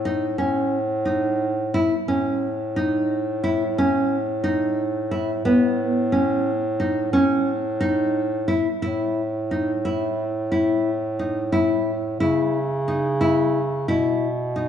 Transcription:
0.00 0.36 A2 medium
0.05 0.24 D#4 medium
0.38 1.91 A2 medium
0.38 0.76 C#4 medium
1.05 1.44 D#4 medium
1.74 1.93 E4 medium
2.08 5.41 A2 medium
2.08 2.46 C#4 medium
2.76 3.14 D#4 medium
3.44 3.63 E4 medium
3.78 4.15 C#4 medium
4.44 4.81 D#4 medium
5.11 5.30 E4 medium
5.45 7.09 A2 medium
5.45 5.82 B3 medium
6.12 6.49 C#4 medium
6.80 6.98 D#4 medium
7.12 8.65 A2 medium
7.12 7.51 C#4 medium
7.80 8.18 D#4 medium
8.48 8.67 E4 medium
8.82 12.17 A2 medium
8.82 9.20 E4 medium
9.51 9.70 D#4 medium
9.85 10.23 E4 medium
10.52 10.89 E4 medium
11.19 11.38 D#4 medium
11.52 11.90 E4 medium
12.20 13.86 C#3 medium
12.20 12.58 E4 medium
12.88 13.07 D#4 medium
13.21 13.59 E4 medium
13.88 14.69 B2 medium
13.88 14.26 E4 medium
14.56 14.69 D#4 medium

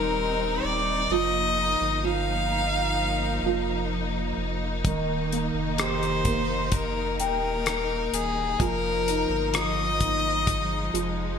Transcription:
0.00 0.60 D#1 medium
0.00 1.07 D#3 medium
0.00 1.06 G3 medium
0.00 1.09 C4 medium
0.00 1.12 D#4 soft
0.00 11.39 D#4 medium
0.00 0.60 G4 soft
0.00 0.66 A#4 medium
0.65 1.08 D#1 medium
0.65 1.13 D5 medium
1.10 1.76 F1 loud
1.10 2.03 F3 medium
1.10 4.82 F3 medium
1.10 10.45 A#3 medium
1.10 2.07 D#5 medium
1.58 2.50 D#4 soft
1.81 3.40 G1 medium
2.04 3.44 F3 soft
2.04 3.91 F5 medium
2.51 4.34 D#4 soft
3.43 4.33 F1 medium
3.43 4.82 F3 soft
4.38 4.86 F1 medium
4.84 5.51 D#1 medium
4.84 8.56 D#3 medium
4.84 8.57 D#3 medium
4.84 kick medium
4.84 closed hi-hat medium
5.32 6.25 A#3 soft
5.32 closed hi-hat medium
5.54 7.21 F1 medium
5.78 7.63 G4 soft
5.78 6.75 C5 medium
5.78 cross-stick loud
5.78 closed hi-hat medium
6.03 closed hi-hat soft
6.25 8.10 A#3 soft
6.25 kick medium
6.25 closed hi-hat medium
6.72 7.20 A#4 medium
6.72 kick medium
6.72 closed hi-hat medium
7.20 8.09 D#1 medium
7.20 8.15 A#4 medium
7.20 8.56 G5 soft
7.20 closed hi-hat medium
7.66 cross-stick medium
7.66 closed hi-hat medium
8.13 8.57 D#1 medium
8.13 8.63 G#4 medium
8.13 closed hi-hat medium
8.60 9.26 F1 loud
8.60 9.53 F3 medium
8.60 11.39 F3 medium
8.60 9.57 A#4 medium
8.60 kick medium
8.60 closed hi-hat medium
9.08 10.00 D#4 soft
9.08 closed hi-hat medium
9.29 10.90 G1 medium
9.54 10.92 F3 soft
9.54 11.39 D#5 medium
9.54 cross-stick medium
9.54 closed hi-hat medium
10.00 11.39 D#4 soft
10.00 kick medium
10.00 closed hi-hat medium
10.47 11.39 G#3 medium
10.47 kick medium
10.47 closed hi-hat medium
10.94 11.39 F1 loud
10.94 11.39 F3 medium
10.94 closed hi-hat medium

